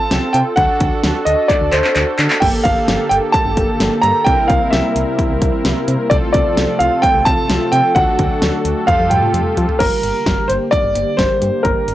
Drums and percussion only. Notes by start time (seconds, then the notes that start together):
0.11 snare, closed hi-hat
0.34 closed hi-hat
0.57 kick, closed hi-hat
0.80 kick, closed hi-hat
1.04 snare, closed hi-hat
1.27 closed hi-hat
1.50 kick, clap, closed hi-hat
1.72 clap, closed hi-hat
1.84 clap
1.96 clap, closed hi-hat
2.19 clap, closed hi-hat
2.30 clap
2.42 kick, crash
2.65 kick, closed hi-hat
2.88 snare, closed hi-hat
3.11 closed hi-hat
3.34 kick, closed hi-hat
3.57 kick, closed hi-hat
3.80 snare, closed hi-hat
4.03 closed hi-hat
4.27 kick, closed hi-hat
4.50 kick, closed hi-hat
4.73 snare, closed hi-hat
4.96 closed hi-hat
5.19 kick, closed hi-hat
5.42 kick, closed hi-hat
5.65 snare, closed hi-hat
5.88 closed hi-hat
6.11 kick, closed hi-hat
6.34 kick, closed hi-hat
6.57 snare, closed hi-hat
6.80 closed hi-hat
7.03 kick, closed hi-hat
7.26 kick, closed hi-hat
7.50 snare, closed hi-hat
7.73 closed hi-hat
7.96 kick, closed hi-hat
8.19 kick, closed hi-hat
8.42 snare, closed hi-hat
8.65 closed hi-hat
8.88 kick, closed hi-hat, high tom
9.11 closed hi-hat, mid tom
9.23 mid tom
9.34 closed hi-hat, mid tom
9.57 closed hi-hat, floor tom
9.69 floor tom
9.80 kick, closed hi-hat, crash
10.03 closed hi-hat
10.26 kick, snare, closed hi-hat
10.50 closed hi-hat
10.73 kick, closed hi-hat
10.95 closed hi-hat
11.19 kick, snare, closed hi-hat
11.42 closed hi-hat
11.65 kick, closed hi-hat
11.88 closed hi-hat